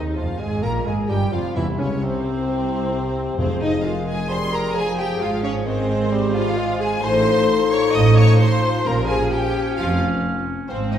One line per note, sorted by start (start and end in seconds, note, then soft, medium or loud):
0.00 0.17 D#2 medium
0.00 0.17 D#4 medium
0.00 0.18 D#4 medium
0.00 0.59 G#4 medium
0.00 0.18 D#5 medium
0.16 0.40 F1 medium
0.16 0.40 F2 medium
0.16 0.41 F3 medium
0.16 0.40 F4 medium
0.16 0.41 F4 medium
0.16 0.40 F4 medium
0.16 0.40 F5 medium
0.40 0.63 G#1 medium
0.40 0.63 G#2 medium
0.40 0.64 G#3 medium
0.40 0.64 G#4 medium
0.40 0.63 G#4 medium
0.40 0.64 G#4 medium
0.40 0.46 G#5 medium
0.40 0.64 G#5 medium
0.62 0.87 A#1 medium
0.62 0.87 A#2 medium
0.62 0.85 A#3 medium
0.62 1.09 F4 medium
0.62 0.88 A#4 medium
0.62 0.87 A#4 medium
0.62 0.72 A#4 medium
0.62 0.86 A#5 medium
0.62 0.72 A#5 medium
0.85 1.09 G#1 medium
0.85 1.09 G#2 medium
0.85 0.97 G#3 medium
0.85 1.09 G#4 medium
0.85 1.08 G#4 medium
0.85 1.09 G#4 medium
0.85 1.11 G#5 medium
0.85 0.96 G#5 medium
1.08 1.33 G1 medium
1.08 1.33 G2 medium
1.08 1.34 G3 medium
1.08 1.55 F4 medium
1.08 1.16 G4 medium
1.08 1.32 G4 medium
1.08 1.33 G4 medium
1.08 1.33 G5 medium
1.08 1.34 G5 medium
1.31 1.56 F1 medium
1.31 1.56 F2 medium
1.31 1.55 F3 medium
1.31 1.55 F4 medium
1.31 1.56 F4 medium
1.31 1.56 F5 medium
1.31 1.57 F5 medium
1.55 1.64 E1 medium
1.55 1.64 E2 medium
1.55 2.21 C3 medium
1.55 1.66 E3 medium
1.55 1.63 E4 medium
1.55 1.64 E4 medium
1.55 1.80 E4 medium
1.55 2.48 G4 medium
1.55 1.81 E5 medium
1.55 1.65 E5 medium
1.78 2.02 C#2 medium
1.78 2.03 C#3 medium
1.78 1.86 C#4 medium
1.78 2.02 C#4 medium
1.78 2.02 C#5 medium
2.01 3.38 C2 medium
2.01 3.37 C3 medium
2.01 3.35 C4 medium
2.01 3.36 C4 medium
2.01 3.14 C5 medium
2.01 3.38 C5 medium
2.47 2.93 E4 medium
2.93 3.38 G4 medium
3.38 5.16 F1 medium
3.38 4.02 F2 medium
3.38 5.16 F2 medium
3.38 3.85 F3 medium
3.38 3.46 C4 medium
3.38 3.60 C4 medium
3.38 3.83 G#4 medium
3.38 6.14 G#4 medium
3.38 3.63 C5 medium
3.38 3.61 C5 medium
3.60 3.68 D#4 medium
3.60 3.69 D#4 medium
3.60 3.83 D#5 loud
3.60 3.86 D#5 medium
3.83 4.31 G#3 medium
3.83 4.06 F4 medium
3.83 3.91 F4 medium
3.83 4.75 A#4 medium
3.83 4.06 F5 medium
3.83 4.08 F5 medium
4.05 4.28 G#4 medium
4.05 4.29 G#4 medium
4.05 4.31 G#5 medium
4.05 4.29 G#5 loud
4.28 4.76 G3 medium
4.28 4.36 C5 medium
4.28 4.37 C5 loud
4.28 4.52 C6 loud
4.28 4.54 C6 medium
4.51 4.74 A#4 loud
4.51 4.74 A#4 medium
4.51 4.75 A#5 loud
4.51 4.75 A#5 medium
4.74 5.68 F3 medium
4.74 4.97 G#4 loud
4.74 4.82 G#4 medium
4.74 5.19 G#4 medium
4.74 4.98 G#5 loud
4.74 5.00 G#5 medium
4.97 5.20 G4 medium
4.97 5.20 G5 loud
4.97 5.22 G5 medium
5.20 7.00 G#1 medium
5.20 6.99 G#2 medium
5.20 5.28 F4 loud
5.20 5.43 F4 medium
5.20 5.66 C5 medium
5.20 5.43 F5 loud
5.20 5.45 F5 loud
5.42 5.65 C#4 medium
5.42 5.51 C#4 medium
5.42 5.51 C#5 loud
5.42 5.66 C#5 medium
5.65 5.88 G#3 medium
5.65 6.33 C4 loud
5.65 6.11 A#4 loud
5.65 6.33 C5 loud
5.65 6.33 C5 medium
5.89 6.11 G#3 medium
6.11 6.34 G3 medium
6.11 6.60 G4 medium
6.11 6.57 G#4 loud
6.34 6.58 F3 medium
6.34 6.79 F4 medium
6.34 6.80 F4 loud
6.34 6.80 F5 loud
6.34 6.81 F5 loud
6.57 7.02 G#3 medium
6.57 6.90 F4 medium
6.57 7.03 C5 loud
6.80 6.88 G#4 loud
6.80 7.03 G#4 loud
6.80 7.03 G#5 loud
6.80 7.05 G#5 loud
7.02 7.41 A1 loud
7.02 7.41 A2 loud
7.02 10.53 F3 medium
7.02 8.82 D#4 medium
7.02 8.39 A4 loud
7.02 7.70 C5 loud
7.02 7.71 C6 loud
7.02 7.72 C6 loud
7.71 7.93 C#5 loud
7.71 7.96 C#6 loud
7.71 7.94 C#6 loud
7.93 8.32 A1 loud
7.93 8.32 A2 medium
7.93 8.16 D#5 loud
7.93 8.17 D#6 loud
7.93 8.18 D#6 loud
8.16 8.39 C#5 loud
8.16 8.39 C#6 loud
8.16 8.40 C#6 loud
8.39 8.72 F4 medium
8.39 8.85 C5 loud
8.39 8.85 C6 loud
8.39 8.88 C6 loud
8.85 9.24 A#1 medium
8.85 9.24 A#2 medium
8.85 10.71 C#4 loud
8.85 9.76 G4 medium
8.85 9.09 A#4 loud
8.85 8.94 A#5 loud
8.85 9.12 A#5 loud
9.08 9.31 G#4 medium
9.08 9.31 G#4 loud
9.08 9.31 G#5 loud
9.08 9.32 G#5 loud
9.31 9.78 G4 loud
9.31 9.77 G5 loud
9.77 10.16 F1 medium
9.77 10.16 F2 medium
9.77 10.98 F4 medium
9.77 10.00 F4 medium
9.77 9.86 F4 loud
9.77 10.00 F5 loud
9.77 10.00 F5 medium
10.69 10.98 G#1 medium
10.69 10.98 G#2 medium
10.69 10.98 F3 medium
10.69 10.91 C4 medium
10.69 10.98 C4 medium
10.69 10.92 C4 medium
10.69 10.77 C5 medium
10.69 10.92 C5 medium
10.93 10.98 D#4 medium
10.93 10.98 D#5 medium